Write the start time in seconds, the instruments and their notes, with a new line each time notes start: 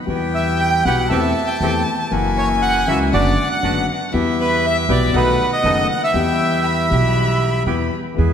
0.07 grand piano E2 E3 G3 B3 G4, upright bass E2, bandoneon B3 E4 G4, violin G5
0.35 bandoneon E5
0.61 bandoneon G5
0.84 grand piano B1 B2 E3 G3 B3 G4, upright bass B1, bandoneon B3 E4 G4 F#5
1.09 grand piano E2 E3 A3 C4 G4, upright bass E2, bandoneon A3 C4 G4 E5, violin A5
1.47 bandoneon G5
1.61 upright bass E2, grand piano E2 E3 A3 C4 G4, bandoneon A3 C4 G4
2.09 upright bass F#1, grand piano F#2 E3 F#3 A#3 C#4, bandoneon A#3 E4 F#4, violin G#5
2.14 grand piano F#4
2.38 bandoneon C#5
2.62 bandoneon F#5
2.87 grand piano C#2 C#3 E3 A#3 C#4 F#4, upright bass C#2, bandoneon A#3 E4 F#4 E5
3.11 upright bass F#1, grand piano F#2 D3 F#3 B3 F#4, bandoneon B3 D4 F#4 D5, violin F#5
3.51 bandoneon F#5
3.63 upright bass F#1, grand piano F#2 D3 F#3 B3 F#4, bandoneon B3 D4 F#4
4.13 grand piano E2 E3 G3 B3 G4, upright bass E2, bandoneon B3 E4 G4, violin E5
4.40 bandoneon B4
4.66 bandoneon E5
4.88 upright bass B1, grand piano B1 B2 E3 G3 B3 G4, bandoneon B3 E4 G4 D5
5.12 grand piano B1 B2 D#3 A3 B3 F#4, upright bass B1, bandoneon B3 D#4 A4, violin F#5
5.16 bandoneon B4
5.53 bandoneon D#5
5.63 grand piano F#1 F#2 D#3 A3 B3 F#4, upright bass F#1, bandoneon B3 D#4 A4
5.91 bandoneon F#5
6.04 bandoneon E5
6.12 upright bass E2, grand piano E2 E3 G3 B3, bandoneon B3 E4 G4, violin G5
6.16 grand piano G4
6.64 violin B5
6.88 grand piano B1 B2 E3 G3 B3 G4, upright bass B1, bandoneon B3 E4 G4
7.66 upright bass E2, grand piano E2 E3 G3 B3 G4, bandoneon B3 E4 G4
8.14 grand piano E2 E3 G#3 B3, bandoneon B3
8.18 upright bass E2, bandoneon E4 G#4, grand piano G#4